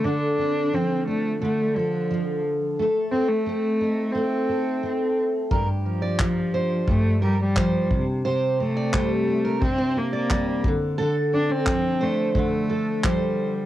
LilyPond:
<<
  \new Staff \with { instrumentName = "Steel-string acoustic guitar" } { \time 4/4 \key d \phrygian \tempo 4 = 88 r1 | r1 | bes'16 r8 d''16 r8 c''8. r16 bes'16 r16 c''8. r16 | c''8 r16 d''16 c''16 r8 bes'16 r16 c''16 r16 d''8 r8. |
a'16 r8 d''16 r8 c''8. r16 a'16 r16 c''8. r16 | }
  \new Staff \with { instrumentName = "Steel-string acoustic guitar" } { \time 4/4 \key d \phrygian <d a'>8 c'8 f8 d'8 d8 a'8 f4 | <a a'>8 c'8 c'8 ees'8 a8 a'8 c'4 | <g, g'>4 f8 d'8 g,8 g'8 f8 c8 | <c g'>8 c'8 g8 d'8 c8 g'8 g8 d8 |
<d a'>8 c'8 f8 d'8 d8 a'8 f4 | }
  \new Staff \with { instrumentName = "Cello" } { \time 4/4 \key d \phrygian d'4 c'8 a8 a8 f4 r8 | r8 c'16 a4~ a16 c'4. r8 | r8 f4. a8 g16 g8. r8 | r8 a4. c'8 bes16 bes8. r8 |
r8 d'16 c'8. a8 a4 g8. r16 | }
  \new DrumStaff \with { instrumentName = "Drums" } \drummode { \time 4/4 r4 r4 r4 r4 | r4 r4 r4 r4 | bd4 <hc bd>4 bd4 <hc bd>8 bd8 | r4 <hc bd>4 bd4 <hc bd>8 bd8 |
r4 <hc bd>4 bd4 <hc bd>4 | }
>>